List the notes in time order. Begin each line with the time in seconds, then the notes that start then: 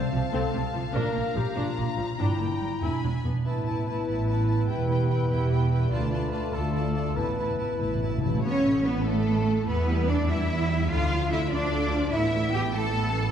Already playing: C3 C5 F5 A5
0.12 C2 C3 F3
0.33 C2 C3 C4 A4
0.53 C2 C3 A3
0.73 C2 C3 F3
0.93 A#1 A#2 D4 A#4 A#5
1.13 A#1 A#2 A#3
1.34 A#1 A#2 F3 G4
1.55 A#1 A#2 D4 F4
1.76 A#1 A#2 A#3
1.97 A#1 A#2 F3
2.17 G1 G2 D4 E4 G5
2.39 G1 G2 A#3
2.61 G1 G2 G3
2.81 E1 E2 D4 E4 G#5 B5
3.04 E1 E2 D4
3.25 E1 E2 B3
3.45 A1 A2 B3 E4 B4 A5
3.66 E4 B4 A5
3.86 E4 B4 A5
4.07 A1 A2 E4 B4 A5
4.28 E4 B4 A5
4.48 E4 B4 A5
4.68 E1 E2 E4 G4 B4 G5
4.89 E4 B4 G5
5.08 E4 B4 G5
5.30 E1 E2 E4 B4 G5
5.51 E4 B4 G5
5.71 E4 B4 G5
5.89 D2 A3 F4 D5
5.93 A5
6.10 F4 D5 A5
6.31 F4 D5 A5
6.52 D2 F4 A4 D5 A5
6.73 F4 D5 A5
6.94 F4 D5 A5
7.15 A1 A2 B3 E4 B4 A5
7.25 A2
7.33 A2
7.38 E4 B4 A5
7.47 A2
7.55 A2 A5
7.59 E4 B4
7.63 A2
7.71 A2
7.79 A1 A2 E4 B4 A5
7.87 A2
7.95 A2
8.02 A2 E4 B4 A5
8.10 A2
8.18 A2 A5
8.23 A2 E4 B4
8.34 A2
8.41 A1 B3 C#4 C#5
8.64 A3
8.85 B3 B4
9.05 A3 A4
9.27 B3
9.47 A3
9.66 E2 E3 B3 B4
9.87 G3 E4
10.08 E3 B3 D4 D5
10.28 G3 E4 E5
10.48 E3 B3
10.68 G3 E4
10.90 D2 D3 D4 F4 F5
11.10 F3 F4
11.29 D3 D4 E4 E5
11.51 F3 D4 F4 D5
11.72 D3 D4
11.93 F3 F4
12.11 A1 A3 B3 E4 E5
12.33 E3 A3
12.52 A3 B3 G4 G5
12.72 E3 A3 A4 A5
12.93 A3 B3
13.14 E3 A3